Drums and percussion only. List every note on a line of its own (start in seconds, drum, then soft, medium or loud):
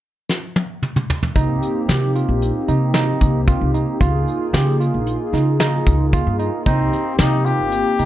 0.29 snare medium
0.56 high tom medium
0.83 mid tom medium
0.96 mid tom medium
1.10 floor tom medium
1.23 floor tom medium
1.36 kick loud
1.36 closed hi-hat medium
1.62 closed hi-hat medium
1.89 snare medium
1.89 closed hi-hat medium
2.15 closed hi-hat medium
2.42 closed hi-hat medium
2.68 closed hi-hat medium
2.94 snare medium
2.94 closed hi-hat medium
3.21 kick medium
3.21 closed hi-hat medium
3.48 kick loud
3.48 closed hi-hat medium
3.74 closed hi-hat medium
4.00 kick medium
4.00 closed hi-hat medium
4.27 closed hi-hat medium
4.54 snare medium
4.54 closed hi-hat medium
4.81 closed hi-hat medium
5.07 closed hi-hat medium
5.34 snare soft
5.34 closed hi-hat medium
5.60 snare medium
5.60 closed hi-hat medium
5.87 kick medium
5.87 closed hi-hat medium
6.13 kick medium
6.13 closed hi-hat medium
6.39 closed hi-hat medium
6.66 kick medium
6.66 closed hi-hat medium
6.93 snare soft
6.93 closed hi-hat medium
7.19 snare loud
7.19 closed hi-hat medium
7.46 closed hi-hat medium
7.72 closed hi-hat medium
7.99 closed hi-hat medium